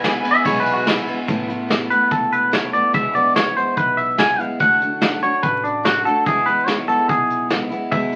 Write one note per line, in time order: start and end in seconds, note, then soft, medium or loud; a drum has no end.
0.00 0.21 E1 medium
0.00 0.24 E3 medium
0.00 0.24 G#3 medium
0.00 1.25 E4 medium
0.00 1.27 B4 medium
0.00 0.83 G#5 medium
0.00 1.26 G#5 medium
0.04 0.24 B3 medium
0.04 0.22 E4 medium
0.04 snare loud
0.04 ride medium
0.24 0.44 E3 soft
0.24 0.45 G#3 medium
0.24 0.45 B3 medium
0.24 0.45 E4 soft
0.24 ride medium
0.31 0.45 E5 loud
0.45 1.04 B1 medium
0.45 0.86 E2 loud
0.45 0.87 B2 medium
0.45 0.85 E3 medium
0.45 0.86 G#3 medium
0.45 0.87 B3 loud
0.45 0.87 E4 loud
0.45 0.59 C#5 medium
0.45 kick loud
0.45 ride medium
0.60 0.73 B4 medium
0.66 ride medium
0.74 0.88 F#4 medium
0.86 1.07 E3 medium
0.86 1.08 G#3 medium
0.86 1.07 B3 medium
0.86 1.17 E4 loud
0.86 1.06 E4 medium
0.86 snare loud
0.86 ride medium
1.07 1.27 E3 soft
1.07 1.29 G#3 soft
1.07 1.28 B3 medium
1.07 1.28 E4 medium
1.07 ride medium
1.28 1.87 A1 medium
1.28 1.49 A2 medium
1.28 1.49 E3 medium
1.28 1.49 A3 medium
1.28 1.48 B3 medium
1.28 1.47 E4 medium
1.28 kick loud
1.28 closed hi-hat medium
1.48 1.69 A3 soft
1.48 1.69 B3 soft
1.48 1.69 E4 soft
1.48 closed hi-hat medium
1.68 1.90 E3 medium
1.68 1.90 A3 medium
1.68 1.90 B3 medium
1.68 1.88 E4 medium
1.68 snare loud
1.68 closed hi-hat medium
1.89 2.51 A3 soft
1.89 2.52 B3 soft
1.89 2.52 E4 soft
1.89 2.11 B4 medium
1.89 closed hi-hat medium
2.11 2.70 E1 medium
2.11 2.32 A4 medium
2.11 kick loud
2.11 closed hi-hat medium
2.32 2.53 B4 medium
2.32 closed hi-hat medium
2.52 2.73 E3 medium
2.52 2.73 A3 medium
2.52 2.73 B3 medium
2.52 2.71 E4 medium
2.52 2.73 C#5 medium
2.52 snare loud
2.52 closed hi-hat medium
2.72 2.94 A3 soft
2.72 2.94 B3 medium
2.72 2.94 E4 soft
2.72 2.94 D5 medium
2.72 closed hi-hat medium
2.93 3.53 E1 medium
2.93 3.15 E2 medium
2.93 3.15 B2 medium
2.93 3.15 E3 medium
2.93 3.15 G#3 medium
2.93 3.14 B3 medium
2.93 3.13 E4 medium
2.93 3.14 E5 loud
2.93 kick loud
2.93 closed hi-hat medium
3.14 3.34 E3 soft
3.14 3.35 G#3 soft
3.14 3.36 B3 soft
3.14 3.35 E4 soft
3.14 3.35 D5 medium
3.14 closed hi-hat medium
3.35 3.56 E3 medium
3.35 3.56 G#3 medium
3.35 3.55 B3 medium
3.35 3.54 E4 medium
3.35 3.56 C#5 medium
3.35 snare loud
3.35 closed hi-hat medium
3.56 4.16 E3 soft
3.56 4.17 G#3 soft
3.56 4.18 B3 soft
3.56 4.18 E4 medium
3.56 3.77 C5 medium
3.56 closed hi-hat medium
3.77 4.36 B1 medium
3.77 3.97 B4 medium
3.77 kick loud
3.77 closed hi-hat medium
3.97 4.18 E5 medium
3.97 closed hi-hat medium
4.17 4.39 E3 medium
4.17 4.39 G#3 medium
4.17 4.39 B3 medium
4.17 4.37 E4 medium
4.17 4.40 G#5 loud
4.17 snare loud
4.17 closed hi-hat medium
4.39 4.59 E3 soft
4.39 4.60 G#3 soft
4.39 4.60 B3 medium
4.39 4.60 E4 medium
4.39 4.60 F5 medium
4.39 closed hi-hat medium
4.59 5.19 D2 medium
4.59 4.81 D3 medium
4.59 4.81 A3 medium
4.59 4.81 D4 medium
4.59 4.79 F#4 medium
4.59 5.19 F#5 medium
4.59 kick loud
4.59 closed hi-hat medium
4.80 5.01 A3 soft
4.80 5.02 D4 soft
4.80 5.01 F#4 soft
4.80 closed hi-hat medium
5.01 5.22 D3 medium
5.01 5.23 A3 medium
5.01 5.22 D4 medium
5.01 5.20 F#4 medium
5.01 snare loud
5.01 closed hi-hat medium
5.22 5.83 A3 soft
5.22 5.85 D4 soft
5.22 5.84 F#4 soft
5.22 5.43 C#5 medium
5.22 closed hi-hat medium
5.43 6.02 A1 medium
5.43 5.63 B4 medium
5.43 kick loud
5.43 closed hi-hat medium
5.64 5.84 D4 medium
5.64 closed hi-hat medium
5.83 6.05 D3 medium
5.83 6.05 A3 medium
5.83 6.04 D4 medium
5.83 6.05 F#4 medium
5.83 6.03 F#4 medium
5.83 snare loud
5.83 closed hi-hat medium
6.04 6.26 A3 soft
6.04 6.26 D4 soft
6.04 6.25 F#4 medium
6.04 6.25 A4 medium
6.04 closed hi-hat medium
6.26 6.47 E2 medium
6.26 6.85 E2 medium
6.26 6.47 B2 medium
6.26 6.47 E3 medium
6.26 6.47 G#3 medium
6.26 6.47 B3 medium
6.26 6.45 E4 loud
6.26 6.46 G#4 medium
6.26 kick loud
6.26 closed hi-hat medium
6.46 6.65 E3 soft
6.46 6.66 G#3 soft
6.46 6.67 B3 soft
6.46 6.67 E4 medium
6.46 6.67 B4 medium
6.46 closed hi-hat medium
6.67 6.88 E3 medium
6.67 6.88 G#3 medium
6.67 6.88 B3 medium
6.67 6.86 E4 medium
6.67 6.87 C#5 loud
6.67 snare loud
6.67 closed hi-hat medium
6.88 7.49 E3 soft
6.88 7.49 G#3 soft
6.88 7.50 B3 soft
6.88 7.51 E4 soft
6.88 7.08 A4 loud
6.88 closed hi-hat medium
7.09 7.67 B1 medium
7.09 7.48 G#4 medium
7.09 kick loud
7.09 closed hi-hat medium
7.30 closed hi-hat medium
7.49 7.71 E3 medium
7.49 7.71 G#3 medium
7.49 7.71 B3 medium
7.49 7.69 E4 medium
7.49 snare loud
7.49 closed hi-hat medium
7.70 7.91 E3 medium
7.70 7.91 G#3 soft
7.70 7.92 B3 medium
7.70 7.91 E4 medium
7.70 closed hi-hat medium
7.91 8.12 E2 medium
7.91 8.16 E2 medium
7.91 8.13 B2 medium
7.91 8.13 E3 medium
7.91 8.13 G#3 medium
7.91 8.12 B3 medium
7.91 8.11 E4 medium
7.91 8.16 E5 medium
7.91 kick loud
7.91 closed hi-hat medium
8.12 8.16 E4 soft
8.12 closed hi-hat medium